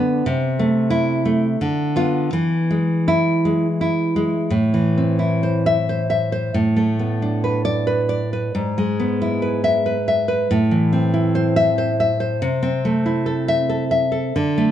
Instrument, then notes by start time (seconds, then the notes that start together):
nylon-string guitar
Already playing: D3 B3 D4
0.26 C3
0.59 A3
0.90 E4
1.25 A3
1.61 D3
1.96 B3 F4
2.33 E3
2.70 G#3
3.08 E4
3.45 G#3
3.81 E4
4.16 G#3
4.50 A2
4.74 E3
4.98 C4
5.19 E4
5.43 C5
5.66 E5
5.89 C5
6.10 E5
6.32 C5
6.54 A2
6.76 A3
6.99 B3
7.22 D4
7.44 B4
7.65 D5
7.87 B4
8.09 D5
8.33 B4
8.55 G#2
8.78 G#3
9.00 B3
9.22 E4
9.42 B4
9.64 E5
9.86 B4
10.08 E5
10.28 B4
10.51 A2
10.71 E3
10.93 C4
11.14 E4
11.35 C5
11.56 E5
11.78 C5
12.00 E5
12.20 C5
12.42 C3
12.63 C4
12.85 A3
13.06 E4
13.26 A4
13.48 E5
13.70 A4
13.91 E5
14.12 A4
14.36 D3
14.58 A3